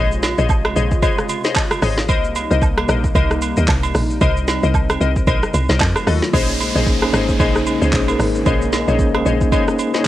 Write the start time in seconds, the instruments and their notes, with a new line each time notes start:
Already playing: log drum bass A#1, analog synth pad C3 C#3 G#3 F4, synth pluck G#4 C5 C#5 D#5
0.12 shaker
0.23 snare, high agogo, shaker
0.38 log drum bass A#1, synth pluck G#4 C5 C#5 D#5, shaker
0.49 kick, low woodblock, shaker
0.65 cross-stick, high agogo
0.76 log drum bass A#1, synth pluck G#4 C5 C#5 D#5, shaker
0.91 kick, shaker
1.02 synth pluck G#4 C5 C#5 D#5, kick, high agogo, shaker
1.18 cross-stick, shaker
1.29 high agogo, shaker
1.44 synth pluck G#4 C5 C#5 D#5, snare, shaker
1.56 kick, clap, low woodblock, shaker
1.71 cross-stick, high agogo, shaker
1.82 log drum bass G#1, synth pluck G#4 C5 C#5 D#5, cross-stick, open hi-hat, shaker
1.98 snare, shaker
2.08 log drum bass C2, analog synth pad C3 G3 A#3 D#4, synth pluck A#4 C5 D#5, kick, high agogo, shaker
2.24 shaker
2.35 high agogo, shaker
2.51 log drum bass C2, synth pluck A#4 C5 D#5, shaker
2.62 kick, low woodblock, shaker
2.77 cross-stick, high agogo
2.88 log drum bass A#1, synth pluck A#4 C5 D#5, cross-stick, shaker
3.04 kick, shaker
3.15 log drum bass C2, synth pluck A#4 C5 D#5, kick, high agogo, shaker
3.31 cross-stick, shaker
3.42 high agogo, shaker
3.57 log drum bass D#2, synth pluck A#4 C5 D#5, shaker
3.68 log drum bass C2, kick, clap, low woodblock, shaker
3.83 high agogo, shaker
3.95 log drum bass A#1, cross-stick, open hi-hat, shaker
4.10 shaker
4.21 log drum bass C2, analog synth pad C4, synth pluck A#4 C5 D#5, kick, high agogo, shaker
4.37 shaker
4.48 snare, high agogo, shaker
4.63 log drum bass C2, synth pluck A#4 C5 D#5, shaker
4.74 kick, low woodblock, shaker
4.90 cross-stick, high agogo, shaker
5.01 log drum bass C2, synth pluck A#4 C5 D#5, shaker
5.16 kick, shaker
5.27 log drum bass A#1, synth pluck A#4 C5 D#5, kick, high agogo, shaker
5.43 cross-stick, shaker
5.54 log drum bass C2, high agogo, shaker
5.69 log drum bass C2, synth pluck A#4 C5 D#5, snare, shaker
5.80 log drum bass F2, analog synth pad D#3 F#3 A3 F4, kick, clap, low woodblock, shaker
5.96 cross-stick, high agogo, shaker
6.07 log drum bass D#2, synth pluck F#4 A4 D#5, cross-stick, open hi-hat, shaker
6.22 snare, shaker
6.32 log drum bass A#1, analog synth pad C#3 G#3 C#4 D#4, tine electric piano A#3 C#4 D#4 G#4 C5, synth pluck G#4 C5 C#5 D#5, kick, downlifter, high agogo, shaker
6.49 shaker
6.60 high agogo, shaker
6.74 log drum bass A#1, tine electric piano A#3 C#4 D#4 G#4 C5, synth pluck G#4 C5 C#5 D#5, shaker
6.86 kick, shaker
7.00 tine electric piano A#3 C#4 D#4 G#4 C5, cross-stick, high agogo
7.13 log drum bass G#1, synth pluck G#4 C5 C#5 D#5, cross-stick, shaker
7.29 kick, shaker
7.38 log drum bass A#1, tine electric piano A#3 C#4 D#4 G#4 C5, synth pluck G#4 C5 C#5 D#5, kick, high agogo, shaker
7.55 cross-stick, shaker
7.66 high agogo, shaker
7.80 log drum bass C#2, tine electric piano A#3 C#4 D#4 G#4 C5, synth pluck G#4 C5 C#5 D#5, shaker
7.93 log drum bass A#1, kick, clap, shaker
8.07 tine electric piano A#3 C#4 D#4 G#4 A#4, high agogo, shaker
8.19 log drum bass G#1, cross-stick, open hi-hat, shaker
8.35 shaker
8.44 log drum bass A#1, tine electric piano A#3 C#4 D#4 G#4 D#5, synth pluck G#4 C5 C#5 D#5, kick, high agogo, shaker
8.62 shaker
8.73 snare, high agogo, shaker
8.86 log drum bass A#1, tine electric piano A#3 C#4 D#4 G#4 C#5, synth pluck G#4 C5 C#5 D#5, shaker
8.99 kick, shaker
9.13 tine electric piano A#3 C#4 D#4 G#4 C5, cross-stick, high agogo
9.26 log drum bass A#1, synth pluck G#4 C5 C#5 D#5, shaker
9.41 kick, shaker
9.51 tine electric piano A#3 C#4 D#4 G#4 C5, synth pluck G#4 C5 C#5 D#5, kick, high agogo, shaker
9.68 cross-stick, shaker
9.79 high agogo, shaker
9.93 tine electric piano A#3 C#4 D#4 G#4 C#5, synth pluck G#4 C5 C#5 D#5, snare, shaker